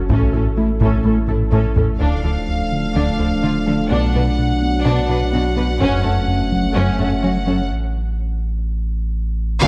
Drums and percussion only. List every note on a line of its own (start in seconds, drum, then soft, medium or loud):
0.10 taiko medium
0.81 taiko medium
1.28 taiko low-mid medium
1.52 taiko low-mid medium
1.77 taiko low medium
2.00 taiko soft
5.81 taiko medium
6.52 taiko soft
9.62 taiko loud